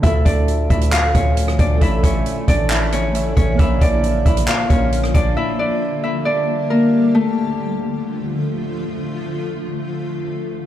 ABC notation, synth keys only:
X:1
M:4/4
L:1/8
Q:1/4=135
K:Dm
V:1 name="Synth keys"
[D,A,FA]8 | [A,A^ce]6 [A,Ace]2 | [B,Bdf]4- [B,Bdf] [B,Bf]3 | z8 |
z8 | z8 |]